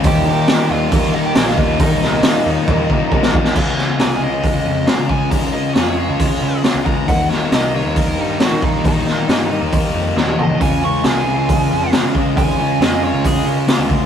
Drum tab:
CC |----------------|----------------|x---------------|----------------|
HH |o---o---o---o---|o---o-----------|----o---o---o---|o---o---o---o---|
SD |----o-------oo--|--o-o--------o-o|--o-o-------o---|----o-------o---|
T1 |----------------|----------------|----------------|----------------|
T2 |----------------|----------------|----------------|----------------|
FT |----------------|----------------|----------------|----------------|
BD |o-------o-----o-|o-------o-o-o-o-|o-------o-----o-|o-------o-----o-|

CC |----------------|----------------|----------------|----------------|
HH |o---o---o---o---|o---o---o-------|o---o---o---o---|o---o---o---o---|
SD |--o-o-------o---|--o-o-------o---|----o-------o---|----o-------o---|
T1 |----------------|-------------o--|----------------|----------------|
T2 |----------------|--------------o-|----------------|----------------|
FT |----------------|---------------o|----------------|----------------|
BD |o-------o-----o-|o-------o-------|o-------o-----o-|o-------o-----o-|